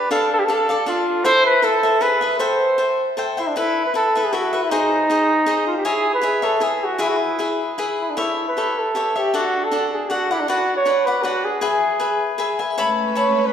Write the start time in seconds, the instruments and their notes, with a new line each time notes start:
Already playing: cavaquinho G4 B4 D5, trumpet B4
0.11 cavaquinho D4 A4 D5 F5, trumpet A4
0.33 trumpet A4
0.40 trumpet G4
0.45 cavaquinho D4, trumpet A4
0.49 cavaquinho A4 D5 F5
0.69 cavaquinho A4 D5 F5
0.86 cavaquinho D4 A4 D5 F5, trumpet F4
1.25 cavaquinho E4 A4 C5 E5, trumpet C5
1.46 trumpet B4
1.62 cavaquinho E4 A4 C5 E5, trumpet A4
1.83 cavaquinho A4 C5 E5
2.01 cavaquinho E4 G#4 B4 E5, trumpet B4
2.21 cavaquinho G#4 B4 E5
2.39 cavaquinho A4 C5 E5 G5, trumpet C5
2.78 cavaquinho A4 C5 E5 G5
3.17 cavaquinho A4 C5 E5 G5
3.37 trumpet E4, cavaquinho C5 E5 G5
3.48 trumpet D4
3.56 cavaquinho E4 A4 B4 E5, trumpet E4
3.86 trumpet B4
3.94 cavaquinho E4 A4 B4 E5, trumpet A4
4.15 cavaquinho A4 B4 E5
4.25 trumpet G#4
4.33 cavaquinho E4 A4 B4 E5, trumpet F#4
4.53 cavaquinho A4 B4 E5
4.63 trumpet E4
4.70 trumpet D#4, cavaquinho D#4 G#4 C5 D#5
5.10 cavaquinho D#4 G#4 C5 D#5
5.46 cavaquinho D#4 G#4 C5 D#5
5.67 trumpet F4
5.77 trumpet G4
5.85 cavaquinho E4 G#4 C#5 E5, trumpet G#4
6.14 trumpet B4
6.22 cavaquinho E4 G#4 C#5 E5
6.42 cavaquinho G#4 C#5 E5, trumpet A4
6.60 cavaquinho E4 G#4 C#5 E5, trumpet G#4
6.84 trumpet F#4
6.98 cavaquinho E4 G#4 B4 E5, trumpet E4
7.09 trumpet F#4
7.17 trumpet E4
7.39 cavaquinho E4 G#4 B4 E5
7.78 cavaquinho E4 G#4 B4 E5
8.01 trumpet E4
8.10 trumpet D4
8.17 trumpet E4, cavaquinho G4 A4 C#5 E5
8.48 trumpet B4
8.57 cavaquinho G4 A4 C#5 E5
8.79 trumpet A4
8.95 cavaquinho G4 A4 C#5 E5
9.16 trumpet G4, cavaquinho A4 C#5 E5
9.34 cavaquinho D4 A4 D5 F#5, trumpet F#4
9.65 trumpet A4
9.71 cavaquinho D4 A4 D5 F#5
9.94 trumpet G#4
10.10 cavaquinho D4 A4 D5 F#5, trumpet F#4
10.31 trumpet E4, cavaquinho A4 D5 F#5
10.40 trumpet D4
10.48 cavaquinho D4 B4 D5 F#5, trumpet F#4
10.77 trumpet C#5
10.85 cavaquinho D4 B4 D5 F#5
11.06 trumpet B4, cavaquinho B4 D5 F#5
11.23 cavaquinho D4 B4 D5 F#5, trumpet F#4
11.45 trumpet G#4
11.61 cavaquinho G#4 B4 E5 G#5
12.00 cavaquinho G#4 B4 E5 G#5
12.38 cavaquinho G#4 B4 E5 G#5
12.59 cavaquinho B4 E5 G#5
12.78 string section A3 C#4 B4, cavaquinho C#5 E5 A5 B5
13.15 cavaquinho C#5 E5 A5 B5, trumpet C#5
13.46 trumpet B4